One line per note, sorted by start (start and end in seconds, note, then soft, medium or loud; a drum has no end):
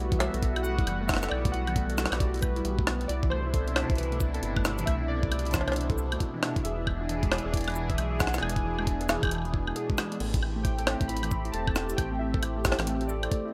0.00 0.29 B1 loud
0.00 3.06 G3 medium
0.00 3.06 B3 medium
0.00 3.06 F#4 medium
0.12 0.16 E3 loud
0.12 kick loud
0.12 closed hi-hat medium
0.19 0.27 A3 loud
0.19 0.61 E5 loud
0.19 cross-stick loud
0.19 cowbell medium
0.34 0.84 B1 medium
0.34 0.41 A4 medium
0.34 closed hi-hat medium
0.43 0.53 A4 loud
0.43 kick loud
0.43 closed hi-hat medium
0.56 0.64 E4 medium
0.56 closed hi-hat soft
0.56 high woodblock medium
0.63 0.78 A3 medium
0.63 1.10 F#5 loud
0.63 cabasa medium
0.79 0.83 E4 medium
0.79 kick loud
0.79 closed hi-hat soft
0.87 1.28 F#1 loud
0.87 0.93 E3 loud
0.87 closed hi-hat medium
0.87 high woodblock medium
1.01 1.05 A3 loud
1.08 1.20 A4 medium
1.08 1.29 E5 medium
1.08 kick loud
1.08 cross-stick loud
1.08 cabasa medium
1.14 cross-stick loud
1.17 cross-stick medium
1.23 1.30 A4 loud
1.23 cross-stick medium
1.23 closed hi-hat soft
1.23 cabasa medium
1.29 2.07 B1 loud
1.29 1.45 E4 medium
1.29 1.53 D5 loud
1.29 cross-stick soft
1.29 high woodblock medium
1.45 1.53 A3 medium
1.45 kick loud
1.45 closed hi-hat medium
1.52 1.60 E4 medium
1.52 2.15 F#5 loud
1.52 closed hi-hat soft
1.67 1.71 E3 loud
1.67 closed hi-hat soft
1.67 high woodblock medium
1.76 1.82 A3 loud
1.76 kick loud
1.76 closed hi-hat medium
1.90 1.96 A4 medium
1.90 closed hi-hat medium
1.98 2.09 A4 loud
1.98 cross-stick loud
1.98 cabasa medium
2.06 cross-stick loud
2.12 2.62 B1 medium
2.12 2.20 E4 medium
2.12 cross-stick medium
2.12 closed hi-hat medium
2.12 high woodblock medium
2.19 2.34 A3 medium
2.19 2.29 D5 medium
2.19 kick loud
2.19 closed hi-hat medium
2.34 2.38 E4 medium
2.34 closed hi-hat soft
2.36 closed hi-hat soft
2.38 closed hi-hat soft
2.39 closed hi-hat soft
2.41 2.49 A3 medium
2.41 2.83 B4 medium
2.41 kick loud
2.41 closed hi-hat soft
2.41 cabasa medium
2.41 high woodblock medium
2.56 2.60 E4 loud
2.56 closed hi-hat soft
2.65 3.06 B1 medium
2.65 2.75 E3 medium
2.65 closed hi-hat medium
2.79 2.85 A3 medium
2.79 kick loud
2.87 3.00 B3 medium
2.87 cross-stick loud
2.87 high woodblock medium
3.01 3.09 G3 medium
3.01 closed hi-hat soft
3.08 3.85 C2 loud
3.08 10.16 B2 medium
3.08 6.61 C3 medium
3.08 6.61 D4 medium
3.08 6.61 E4 medium
3.08 3.16 E4 medium
3.08 3.31 D5 loud
3.08 closed hi-hat medium
3.23 3.27 E3 loud
3.23 kick loud
3.30 3.38 A3 loud
3.30 3.93 C5 loud
3.30 high woodblock medium
3.45 3.52 E4 medium
3.54 3.64 A4 loud
3.54 kick loud
3.54 closed hi-hat medium
3.68 3.76 E4 medium
3.68 closed hi-hat soft
3.76 3.89 A3 medium
3.76 cross-stick loud
3.76 cowbell medium
3.76 high woodblock medium
3.90 4.40 C2 medium
3.90 3.94 E4 medium
3.90 kick loud
3.90 closed hi-hat soft
3.96 4.05 E3 loud
3.96 4.60 B4 medium
3.96 closed hi-hat soft
3.98 closed hi-hat medium
4.03 closed hi-hat soft
4.12 4.16 A3 loud
4.12 closed hi-hat soft
4.20 4.31 E4 medium
4.20 kick loud
4.20 cabasa medium
4.34 4.41 A4 loud
4.34 closed hi-hat soft
4.43 4.84 G1 loud
4.43 4.56 E4 medium
4.43 closed hi-hat medium
4.57 4.65 A3 medium
4.57 kick loud
4.57 high woodblock medium
4.65 4.71 E4 medium
4.65 cross-stick loud
4.65 cabasa medium
4.79 4.83 E3 loud
4.79 closed hi-hat soft
4.79 cabasa medium
4.86 5.62 C2 loud
4.86 4.93 A3 loud
4.86 4.96 E5 loud
4.86 kick loud
4.86 closed hi-hat medium
4.86 high woodblock medium
5.01 5.07 E4 medium
5.08 5.20 A4 loud
5.08 5.54 D5 loud
5.23 5.31 E4 medium
5.23 kick loud
5.32 5.45 A3 medium
5.32 closed hi-hat medium
5.32 high woodblock medium
5.39 closed hi-hat medium
5.45 5.49 E4 medium
5.45 closed hi-hat soft
5.51 5.60 E3 loud
5.51 6.16 C5 medium
5.51 kick loud
5.51 cross-stick loud
5.51 closed hi-hat soft
5.51 cowbell soft
5.51 cabasa medium
5.61 cowbell medium
5.68 6.17 C2 medium
5.68 5.71 A3 loud
5.68 closed hi-hat soft
5.68 cowbell medium
5.68 high woodblock medium
5.72 closed hi-hat soft
5.72 cowbell medium
5.76 5.87 E4 medium
5.76 closed hi-hat medium
5.81 closed hi-hat soft
5.90 5.96 A4 medium
5.90 kick loud
5.90 closed hi-hat soft
5.98 6.11 E4 medium
5.98 cabasa medium
6.12 6.20 A3 medium
6.12 closed hi-hat soft
6.12 high woodblock medium
6.20 6.27 E4 medium
6.20 kick loud
6.20 closed hi-hat medium
6.34 6.38 E3 loud
6.43 6.49 A3 loud
6.43 cross-stick loud
6.43 high woodblock medium
6.56 6.63 E4 medium
6.56 kick loud
6.56 closed hi-hat soft
6.64 7.40 E1 loud
6.64 10.17 E3 medium
6.64 10.17 D4 medium
6.64 10.17 G#4 medium
6.64 6.75 G#4 loud
6.64 7.56 E5 medium
6.64 closed hi-hat medium
6.79 6.87 E4 medium
6.87 7.00 G#3 medium
6.87 kick loud
6.87 high woodblock medium
7.01 7.05 E4 medium
7.09 7.16 E3 loud
7.09 closed hi-hat medium
7.23 7.27 G#3 loud
7.23 kick loud
7.23 closed hi-hat soft
7.31 7.42 E4 medium
7.31 cross-stick loud
7.31 cowbell loud
7.31 high woodblock medium
7.38 closed hi-hat medium
7.45 7.95 E1 medium
7.45 7.52 G#4 loud
7.52 7.67 E4 medium
7.52 7.90 D5 medium
7.52 kick loud
7.52 closed hi-hat medium
7.57 closed hi-hat medium
7.61 closed hi-hat soft
7.64 7.76 G#3 medium
7.64 closed hi-hat soft
7.68 closed hi-hat soft
7.68 high woodblock medium
7.70 closed hi-hat soft
7.74 7.82 E4 medium
7.74 closed hi-hat soft
7.74 cabasa medium
7.88 7.94 E3 loud
7.88 8.21 E5 loud
7.88 kick loud
7.88 closed hi-hat soft
7.98 8.39 B1 loud
7.98 8.05 G#3 loud
7.98 closed hi-hat medium
7.98 high woodblock medium
8.12 8.18 E4 medium
8.19 8.31 G#4 loud
8.19 8.43 F#5 loud
8.19 kick loud
8.19 cross-stick loud
8.19 cabasa medium
8.27 cross-stick medium
8.34 8.42 E4 medium
8.34 cross-stick medium
8.34 closed hi-hat soft
8.34 cabasa medium
8.38 9.71 G#5 loud
8.38 cross-stick medium
8.43 9.18 E1 loud
8.43 8.56 G#3 medium
8.43 high woodblock medium
8.49 closed hi-hat medium
8.56 8.60 E4 medium
8.56 kick loud
8.56 closed hi-hat soft
8.65 8.71 E3 loud
8.79 8.83 G#3 loud
8.79 high woodblock medium
8.87 8.98 E4 medium
8.87 kick loud
8.87 closed hi-hat medium
9.01 9.07 G#4 loud
9.01 closed hi-hat medium
9.09 9.22 E4 medium
9.09 cross-stick loud
9.09 cowbell loud
9.09 cabasa medium
9.23 9.73 E1 medium
9.23 9.31 G#3 medium
9.23 kick loud
9.23 closed hi-hat medium
9.23 high woodblock medium
9.25 high woodblock medium
9.27 high woodblock medium
9.29 closed hi-hat medium
9.29 high woodblock soft
9.31 9.38 E4 medium
9.31 high woodblock soft
9.35 high woodblock soft
9.38 high woodblock soft
9.42 9.49 E3 loud
9.42 closed hi-hat soft
9.42 high woodblock soft
9.54 9.67 E4 loud
9.54 kick loud
9.67 9.74 G#3 medium
9.67 high woodblock medium
9.76 9.86 G#4 loud
9.76 closed hi-hat medium
9.90 9.97 G#3 loud
9.90 kick loud
9.98 10.11 G#3 medium
9.98 cross-stick loud
9.98 cabasa medium
9.98 high woodblock medium
10.12 10.16 G#3 medium
10.12 closed hi-hat soft
10.20 10.96 A1 loud
10.20 10.33 A3 medium
10.20 13.53 A3 medium
10.20 13.53 C4 medium
10.20 13.53 G4 medium
10.20 crash medium
10.34 10.38 E4 medium
10.34 kick loud
10.34 closed hi-hat medium
10.43 10.49 E3 loud
10.43 high woodblock medium
10.56 10.60 A3 loud
10.63 10.75 E4 medium
10.63 11.10 G5 loud
10.63 kick loud
10.63 closed hi-hat medium
10.78 10.85 A4 loud
10.78 closed hi-hat medium
10.87 11.00 E4 medium
10.87 cross-stick loud
10.87 cowbell medium
10.87 high woodblock medium
11.01 11.51 A1 medium
11.01 11.09 A3 medium
11.01 kick loud
11.01 closed hi-hat medium
11.08 11.16 E4 medium
11.08 11.54 B5 loud
11.08 closed hi-hat medium
11.17 closed hi-hat medium
11.23 11.27 E3 loud
11.23 closed hi-hat soft
11.23 closed hi-hat medium
11.23 high woodblock medium
11.31 11.38 A3 loud
11.31 kick loud
11.31 cabasa medium
11.45 11.52 E4 medium
11.45 closed hi-hat soft
11.52 11.95 E1 loud
11.52 11.64 A4 loud
11.52 11.99 A5 loud
11.52 closed hi-hat medium
11.67 11.75 E4 medium
11.67 kick loud
11.67 high woodblock medium
11.76 11.89 A3 medium
11.76 cross-stick loud
11.76 cabasa medium
11.90 11.94 E4 medium
11.90 closed hi-hat soft
11.90 cabasa medium
11.97 12.73 A1 loud
11.97 12.04 E3 loud
11.97 12.18 G5 loud
11.97 kick loud
11.97 closed hi-hat medium
11.97 high woodblock medium
12.12 12.16 A3 loud
12.19 12.31 E4 medium
12.19 12.82 E5 medium
12.34 12.41 A4 loud
12.34 kick loud
12.43 12.56 E4 medium
12.43 closed hi-hat medium
12.43 high woodblock medium
12.56 12.64 A3 medium
12.65 12.71 E4 medium
12.65 kick loud
12.65 cross-stick loud
12.65 closed hi-hat medium
12.65 cabasa medium
12.72 cross-stick loud
12.72 cowbell medium
12.79 13.28 A1 medium
12.79 12.83 E3 loud
12.79 cross-stick medium
12.79 closed hi-hat medium
12.79 high woodblock medium
12.87 12.93 A3 loud
12.87 closed hi-hat medium
13.01 13.07 E4 medium
13.01 closed hi-hat soft
13.08 13.20 A4 loud
13.08 13.53 D5 medium
13.08 cabasa medium
13.23 13.31 E4 medium
13.23 closed hi-hat soft
13.23 high woodblock medium
13.32 13.45 A3 medium
13.32 kick loud
13.32 closed hi-hat medium
13.45 13.49 E4 medium